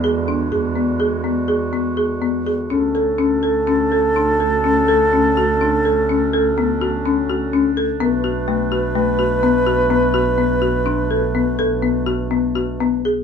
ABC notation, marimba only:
X:1
M:11/8
L:1/8
Q:1/4=125
K:Bdor
V:1 name="Marimba"
G D G B, G B, G B, G B, G | C A C A C A D A C A C | F D A C A B, F C F C A | B, F A, F A, F B, F B, F B, |
F D A B, A B, F B, F B, G |]